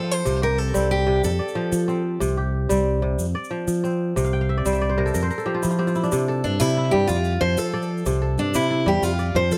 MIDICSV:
0, 0, Header, 1, 5, 480
1, 0, Start_track
1, 0, Tempo, 325027
1, 382, Time_signature, 12, 3, 24, 8
1, 14146, End_track
2, 0, Start_track
2, 0, Title_t, "Steel-string acoustic guitar"
2, 0, Program_c, 0, 25
2, 0, Note_on_c, 0, 69, 84
2, 169, Note_off_c, 0, 69, 0
2, 169, Note_on_c, 0, 72, 94
2, 632, Note_off_c, 0, 72, 0
2, 638, Note_on_c, 0, 70, 89
2, 860, Note_off_c, 0, 70, 0
2, 860, Note_on_c, 0, 69, 101
2, 1338, Note_off_c, 0, 69, 0
2, 1344, Note_on_c, 0, 67, 90
2, 1831, Note_off_c, 0, 67, 0
2, 1837, Note_on_c, 0, 69, 79
2, 2973, Note_off_c, 0, 69, 0
2, 9509, Note_on_c, 0, 62, 79
2, 9741, Note_off_c, 0, 62, 0
2, 9741, Note_on_c, 0, 64, 84
2, 10209, Note_on_c, 0, 67, 90
2, 10240, Note_off_c, 0, 64, 0
2, 10442, Note_off_c, 0, 67, 0
2, 10448, Note_on_c, 0, 65, 95
2, 10939, Note_on_c, 0, 72, 98
2, 10953, Note_off_c, 0, 65, 0
2, 11195, Note_off_c, 0, 72, 0
2, 11195, Note_on_c, 0, 69, 96
2, 11910, Note_off_c, 0, 69, 0
2, 12390, Note_on_c, 0, 62, 79
2, 12634, Note_off_c, 0, 62, 0
2, 12634, Note_on_c, 0, 64, 88
2, 13111, Note_on_c, 0, 67, 90
2, 13122, Note_off_c, 0, 64, 0
2, 13341, Note_off_c, 0, 67, 0
2, 13341, Note_on_c, 0, 65, 88
2, 13820, Note_off_c, 0, 65, 0
2, 13822, Note_on_c, 0, 72, 109
2, 14061, Note_off_c, 0, 72, 0
2, 14061, Note_on_c, 0, 69, 90
2, 14146, Note_off_c, 0, 69, 0
2, 14146, End_track
3, 0, Start_track
3, 0, Title_t, "Kora"
3, 0, Program_c, 1, 46
3, 0, Note_on_c, 1, 53, 78
3, 0, Note_on_c, 1, 60, 62
3, 0, Note_on_c, 1, 74, 60
3, 375, Note_on_c, 1, 48, 82
3, 456, Note_off_c, 1, 53, 0
3, 622, Note_on_c, 1, 67, 65
3, 822, Note_off_c, 1, 74, 0
3, 1089, Note_off_c, 1, 60, 0
3, 1094, Note_on_c, 1, 55, 74
3, 1095, Note_on_c, 1, 60, 65
3, 1557, Note_off_c, 1, 48, 0
3, 1574, Note_on_c, 1, 48, 74
3, 1897, Note_off_c, 1, 55, 0
3, 1898, Note_off_c, 1, 48, 0
3, 2053, Note_on_c, 1, 74, 62
3, 2293, Note_on_c, 1, 53, 80
3, 2708, Note_off_c, 1, 67, 0
3, 2769, Note_off_c, 1, 60, 0
3, 2775, Note_on_c, 1, 60, 67
3, 3255, Note_on_c, 1, 48, 80
3, 3340, Note_off_c, 1, 53, 0
3, 3504, Note_on_c, 1, 67, 62
3, 3690, Note_off_c, 1, 74, 0
3, 3976, Note_off_c, 1, 60, 0
3, 3977, Note_on_c, 1, 55, 76
3, 3982, Note_on_c, 1, 60, 64
3, 4445, Note_off_c, 1, 48, 0
3, 4462, Note_on_c, 1, 48, 66
3, 4782, Note_off_c, 1, 48, 0
3, 4782, Note_off_c, 1, 55, 0
3, 4945, Note_on_c, 1, 74, 64
3, 5177, Note_on_c, 1, 53, 71
3, 5590, Note_off_c, 1, 67, 0
3, 5660, Note_off_c, 1, 60, 0
3, 5665, Note_on_c, 1, 60, 67
3, 6146, Note_on_c, 1, 48, 80
3, 6225, Note_off_c, 1, 53, 0
3, 6267, Note_on_c, 1, 77, 56
3, 6394, Note_on_c, 1, 79, 65
3, 6507, Note_off_c, 1, 77, 0
3, 6513, Note_on_c, 1, 77, 62
3, 6581, Note_off_c, 1, 74, 0
3, 6634, Note_on_c, 1, 76, 62
3, 6757, Note_on_c, 1, 74, 62
3, 6875, Note_on_c, 1, 55, 73
3, 6877, Note_on_c, 1, 72, 66
3, 6980, Note_off_c, 1, 76, 0
3, 6986, Note_on_c, 1, 76, 62
3, 7074, Note_off_c, 1, 77, 0
3, 7104, Note_off_c, 1, 74, 0
3, 7110, Note_on_c, 1, 74, 69
3, 7222, Note_off_c, 1, 72, 0
3, 7228, Note_on_c, 1, 72, 65
3, 7333, Note_off_c, 1, 48, 0
3, 7350, Note_on_c, 1, 48, 71
3, 7350, Note_on_c, 1, 70, 64
3, 7467, Note_on_c, 1, 69, 70
3, 7586, Note_off_c, 1, 70, 0
3, 7592, Note_on_c, 1, 70, 66
3, 7666, Note_off_c, 1, 48, 0
3, 7666, Note_off_c, 1, 55, 0
3, 7711, Note_off_c, 1, 72, 0
3, 7717, Note_on_c, 1, 72, 77
3, 7769, Note_off_c, 1, 79, 0
3, 7826, Note_off_c, 1, 70, 0
3, 7832, Note_on_c, 1, 70, 63
3, 7921, Note_off_c, 1, 69, 0
3, 7943, Note_on_c, 1, 69, 64
3, 8058, Note_on_c, 1, 53, 71
3, 8062, Note_on_c, 1, 67, 68
3, 8147, Note_off_c, 1, 76, 0
3, 8189, Note_on_c, 1, 65, 62
3, 8304, Note_on_c, 1, 64, 58
3, 8324, Note_off_c, 1, 60, 0
3, 8420, Note_off_c, 1, 65, 0
3, 8426, Note_on_c, 1, 65, 63
3, 8544, Note_off_c, 1, 67, 0
3, 8544, Note_on_c, 1, 60, 64
3, 8550, Note_on_c, 1, 67, 60
3, 8664, Note_off_c, 1, 65, 0
3, 8670, Note_on_c, 1, 65, 66
3, 8746, Note_off_c, 1, 74, 0
3, 8758, Note_off_c, 1, 64, 0
3, 8794, Note_on_c, 1, 64, 63
3, 8911, Note_on_c, 1, 62, 64
3, 9037, Note_on_c, 1, 48, 89
3, 9106, Note_off_c, 1, 53, 0
3, 9271, Note_off_c, 1, 69, 0
3, 9277, Note_on_c, 1, 69, 69
3, 9365, Note_off_c, 1, 70, 0
3, 9471, Note_off_c, 1, 72, 0
3, 9741, Note_off_c, 1, 48, 0
3, 9752, Note_off_c, 1, 64, 0
3, 9757, Note_on_c, 1, 48, 79
3, 9758, Note_on_c, 1, 64, 70
3, 9847, Note_off_c, 1, 65, 0
3, 9994, Note_off_c, 1, 64, 0
3, 10000, Note_on_c, 1, 64, 71
3, 10228, Note_on_c, 1, 55, 81
3, 10461, Note_on_c, 1, 65, 70
3, 10545, Note_off_c, 1, 48, 0
3, 10545, Note_off_c, 1, 55, 0
3, 10636, Note_off_c, 1, 67, 0
3, 10945, Note_on_c, 1, 53, 85
3, 11034, Note_off_c, 1, 64, 0
3, 11186, Note_off_c, 1, 69, 0
3, 11191, Note_on_c, 1, 69, 65
3, 11202, Note_off_c, 1, 60, 0
3, 11392, Note_off_c, 1, 62, 0
3, 11415, Note_off_c, 1, 69, 0
3, 11421, Note_on_c, 1, 69, 72
3, 11422, Note_on_c, 1, 74, 62
3, 11906, Note_on_c, 1, 48, 82
3, 11981, Note_off_c, 1, 53, 0
3, 12129, Note_off_c, 1, 69, 0
3, 12135, Note_on_c, 1, 69, 68
3, 12604, Note_off_c, 1, 48, 0
3, 12621, Note_on_c, 1, 48, 81
3, 12622, Note_on_c, 1, 64, 69
3, 12711, Note_off_c, 1, 65, 0
3, 12851, Note_off_c, 1, 64, 0
3, 12857, Note_on_c, 1, 64, 71
3, 13058, Note_off_c, 1, 74, 0
3, 13086, Note_on_c, 1, 55, 82
3, 13328, Note_on_c, 1, 65, 77
3, 13416, Note_off_c, 1, 48, 0
3, 13416, Note_off_c, 1, 55, 0
3, 13570, Note_on_c, 1, 74, 63
3, 13811, Note_on_c, 1, 53, 83
3, 13899, Note_off_c, 1, 64, 0
3, 14045, Note_off_c, 1, 69, 0
3, 14051, Note_on_c, 1, 69, 66
3, 14146, Note_off_c, 1, 53, 0
3, 14146, Note_off_c, 1, 65, 0
3, 14146, Note_off_c, 1, 69, 0
3, 14146, Note_off_c, 1, 74, 0
3, 14146, End_track
4, 0, Start_track
4, 0, Title_t, "Fingered electric bass"
4, 0, Program_c, 2, 33
4, 0, Note_on_c, 2, 53, 84
4, 329, Note_off_c, 2, 53, 0
4, 392, Note_on_c, 2, 36, 84
4, 1049, Note_off_c, 2, 36, 0
4, 1123, Note_on_c, 2, 36, 89
4, 1775, Note_off_c, 2, 36, 0
4, 1831, Note_on_c, 2, 41, 76
4, 2048, Note_off_c, 2, 41, 0
4, 2544, Note_on_c, 2, 53, 90
4, 3206, Note_off_c, 2, 53, 0
4, 3267, Note_on_c, 2, 36, 91
4, 3929, Note_off_c, 2, 36, 0
4, 4001, Note_on_c, 2, 36, 95
4, 4656, Note_off_c, 2, 36, 0
4, 4702, Note_on_c, 2, 41, 74
4, 4925, Note_off_c, 2, 41, 0
4, 5428, Note_on_c, 2, 53, 84
4, 6091, Note_off_c, 2, 53, 0
4, 6158, Note_on_c, 2, 36, 86
4, 6816, Note_off_c, 2, 36, 0
4, 6875, Note_on_c, 2, 36, 84
4, 7535, Note_off_c, 2, 36, 0
4, 7602, Note_on_c, 2, 41, 87
4, 7817, Note_off_c, 2, 41, 0
4, 8336, Note_on_c, 2, 53, 82
4, 8985, Note_off_c, 2, 53, 0
4, 9049, Note_on_c, 2, 48, 93
4, 9481, Note_off_c, 2, 48, 0
4, 9518, Note_on_c, 2, 43, 89
4, 9735, Note_off_c, 2, 43, 0
4, 9753, Note_on_c, 2, 48, 86
4, 10192, Note_off_c, 2, 48, 0
4, 10245, Note_on_c, 2, 43, 92
4, 10458, Note_off_c, 2, 43, 0
4, 10473, Note_on_c, 2, 41, 90
4, 10910, Note_off_c, 2, 41, 0
4, 10953, Note_on_c, 2, 41, 85
4, 11171, Note_off_c, 2, 41, 0
4, 11186, Note_on_c, 2, 53, 94
4, 11847, Note_off_c, 2, 53, 0
4, 11906, Note_on_c, 2, 36, 94
4, 12345, Note_off_c, 2, 36, 0
4, 12371, Note_on_c, 2, 43, 84
4, 12597, Note_off_c, 2, 43, 0
4, 12623, Note_on_c, 2, 48, 98
4, 13062, Note_off_c, 2, 48, 0
4, 13090, Note_on_c, 2, 40, 99
4, 13315, Note_off_c, 2, 40, 0
4, 13326, Note_on_c, 2, 41, 82
4, 13772, Note_off_c, 2, 41, 0
4, 13802, Note_on_c, 2, 41, 90
4, 14030, Note_off_c, 2, 41, 0
4, 14048, Note_on_c, 2, 53, 89
4, 14146, Note_off_c, 2, 53, 0
4, 14146, End_track
5, 0, Start_track
5, 0, Title_t, "Drums"
5, 381, Note_on_c, 9, 82, 55
5, 529, Note_off_c, 9, 82, 0
5, 1105, Note_on_c, 9, 82, 62
5, 1252, Note_off_c, 9, 82, 0
5, 1828, Note_on_c, 9, 82, 61
5, 1975, Note_off_c, 9, 82, 0
5, 2191, Note_on_c, 9, 82, 21
5, 2339, Note_off_c, 9, 82, 0
5, 2546, Note_on_c, 9, 82, 64
5, 2694, Note_off_c, 9, 82, 0
5, 2787, Note_on_c, 9, 82, 19
5, 2935, Note_off_c, 9, 82, 0
5, 3270, Note_on_c, 9, 82, 57
5, 3418, Note_off_c, 9, 82, 0
5, 3991, Note_on_c, 9, 82, 65
5, 4139, Note_off_c, 9, 82, 0
5, 4711, Note_on_c, 9, 82, 61
5, 4858, Note_off_c, 9, 82, 0
5, 5084, Note_on_c, 9, 82, 23
5, 5232, Note_off_c, 9, 82, 0
5, 5431, Note_on_c, 9, 82, 60
5, 5578, Note_off_c, 9, 82, 0
5, 5682, Note_on_c, 9, 82, 19
5, 5830, Note_off_c, 9, 82, 0
5, 6159, Note_on_c, 9, 82, 54
5, 6278, Note_off_c, 9, 82, 0
5, 6278, Note_on_c, 9, 82, 19
5, 6426, Note_off_c, 9, 82, 0
5, 6877, Note_on_c, 9, 82, 55
5, 7004, Note_off_c, 9, 82, 0
5, 7004, Note_on_c, 9, 82, 21
5, 7152, Note_off_c, 9, 82, 0
5, 7488, Note_on_c, 9, 82, 20
5, 7597, Note_off_c, 9, 82, 0
5, 7597, Note_on_c, 9, 82, 56
5, 7744, Note_off_c, 9, 82, 0
5, 7837, Note_on_c, 9, 82, 17
5, 7961, Note_off_c, 9, 82, 0
5, 7961, Note_on_c, 9, 82, 21
5, 8109, Note_off_c, 9, 82, 0
5, 8312, Note_on_c, 9, 82, 61
5, 8432, Note_off_c, 9, 82, 0
5, 8432, Note_on_c, 9, 82, 19
5, 8580, Note_off_c, 9, 82, 0
5, 8677, Note_on_c, 9, 82, 21
5, 8791, Note_off_c, 9, 82, 0
5, 8791, Note_on_c, 9, 82, 20
5, 8917, Note_off_c, 9, 82, 0
5, 8917, Note_on_c, 9, 82, 19
5, 9034, Note_off_c, 9, 82, 0
5, 9034, Note_on_c, 9, 82, 69
5, 9182, Note_off_c, 9, 82, 0
5, 9518, Note_on_c, 9, 82, 22
5, 9666, Note_off_c, 9, 82, 0
5, 9751, Note_on_c, 9, 82, 63
5, 9878, Note_off_c, 9, 82, 0
5, 9878, Note_on_c, 9, 82, 22
5, 10026, Note_off_c, 9, 82, 0
5, 10460, Note_on_c, 9, 82, 57
5, 10607, Note_off_c, 9, 82, 0
5, 10699, Note_on_c, 9, 82, 19
5, 10846, Note_off_c, 9, 82, 0
5, 11183, Note_on_c, 9, 82, 61
5, 11330, Note_off_c, 9, 82, 0
5, 11553, Note_on_c, 9, 82, 20
5, 11701, Note_off_c, 9, 82, 0
5, 11778, Note_on_c, 9, 82, 19
5, 11901, Note_off_c, 9, 82, 0
5, 11901, Note_on_c, 9, 82, 60
5, 12048, Note_off_c, 9, 82, 0
5, 12374, Note_on_c, 9, 82, 18
5, 12522, Note_off_c, 9, 82, 0
5, 12611, Note_on_c, 9, 82, 65
5, 12759, Note_off_c, 9, 82, 0
5, 13334, Note_on_c, 9, 82, 62
5, 13482, Note_off_c, 9, 82, 0
5, 13571, Note_on_c, 9, 82, 19
5, 13719, Note_off_c, 9, 82, 0
5, 14051, Note_on_c, 9, 82, 59
5, 14146, Note_off_c, 9, 82, 0
5, 14146, End_track
0, 0, End_of_file